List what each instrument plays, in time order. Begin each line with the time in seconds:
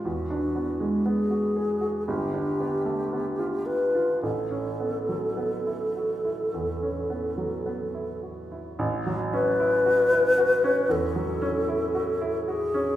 0.04 grand piano E2, alto flute F#4
0.30 grand piano D4
0.56 grand piano B3
0.80 grand piano G#3
1.06 grand piano B3, alto flute G#4
1.31 grand piano F#4
1.56 grand piano G#4
1.81 grand piano F#4
2.07 grand piano G1, alto flute G4
2.34 grand piano D4
2.60 grand piano B3
2.86 grand piano A3
3.13 grand piano B3
3.39 grand piano F4
3.66 grand piano G4, alto flute B4
3.95 grand piano F4
4.23 grand piano A1, alto flute A4
4.51 grand piano C#4
4.80 grand piano B3
5.09 grand piano F#3
5.37 grand piano B3
5.67 grand piano E4
5.97 grand piano F#4
6.25 grand piano E4
6.54 grand piano E2
6.83 grand piano C#4
7.10 grand piano B3
7.37 grand piano F#3
7.66 grand piano B3
7.94 grand piano E4
8.23 grand piano F#4
8.52 grand piano E4
8.79 grand piano A1
9.06 grand piano F#3
9.33 grand piano C#4, alto flute B4
9.60 grand piano E4
9.86 grand piano F#4
10.12 grand piano E4
10.38 grand piano F#4
10.64 grand piano C#4
10.89 grand piano E2, alto flute A4
11.16 grand piano F#3
11.42 grand piano C#4
11.69 grand piano E4
11.95 grand piano F#4
12.21 grand piano E4
12.48 grand piano F#4, alto flute G#4
12.74 grand piano C#4